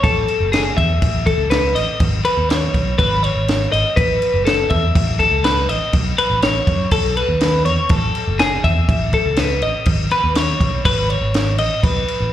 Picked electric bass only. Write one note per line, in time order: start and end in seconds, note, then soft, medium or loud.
0.04 0.24 A1 loud
0.40 0.70 F#1 loud
0.77 0.97 E2 medium
1.02 1.32 A1 loud
1.38 1.75 C#2 loud
1.75 1.85 A1 loud
2.00 2.20 G#1 loud
2.37 2.67 D#2 loud
2.74 2.94 B1 medium
2.99 3.29 G#1 loud
3.36 3.65 G#1 loud
3.73 3.83 G#1 medium
3.97 4.17 A1 loud
4.34 4.64 F#1 loud
4.70 4.90 E2 medium
4.95 5.25 A1 medium
5.32 5.68 C#2 loud
5.68 5.79 A1 medium
5.93 6.13 B1 loud
6.30 6.60 A1 medium
6.67 6.87 F#2 loud
6.92 7.21 B1 loud
7.29 7.66 D#2 loud
7.66 7.76 E2 loud
7.89 8.10 A1 loud
8.28 8.57 F#1 medium
8.64 8.84 E2 medium
8.89 9.18 A1 loud
9.26 9.62 C#2 loud
9.62 9.72 A1 medium
9.86 10.06 G#1 loud
10.24 10.54 D#2 loud
10.60 10.80 B1 medium
10.85 11.15 G#1 loud
11.21 11.58 G#1 loud
11.58 11.68 A1 loud
11.84 12.04 B1 loud
12.20 12.33 A1 loud